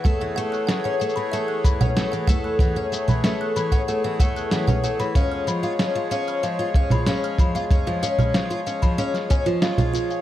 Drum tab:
SH |x---x-x-x---xx--x---x-x-x-x-x---|x---x-x-x---x-x-x---x-x-x-x-x-x-|x---x-x-x---x-x-x-----x-x-x-x-x-|x---x-x-x-x-x-x-x-x-x-x-x-x-x-x-|
SD |--------o---------------o-------|--------o---------------o-------|--------o---------------o-------|--------o---------o-----o-------|
CG |----------------------O---------|------O-------------------O-----|----------------------O---------|------O-------------------O-----|
BD |o-------------------o-------o---|o-------------o-----o-----------|o-------------------o-------o---|o-------------o-----o-----------|